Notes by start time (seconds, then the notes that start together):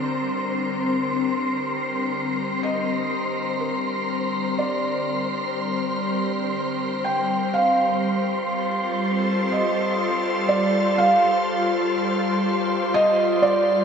Already playing: D3 G3 C4 A#4 C5 D5 C6
2.63 D#5
3.61 A#4
4.59 D5
7.05 G5
7.54 F5
8.08 F4
8.45 A4
8.54 C5
9.52 D#5
10.49 D5
10.98 F5
12.94 D#5
13.42 D5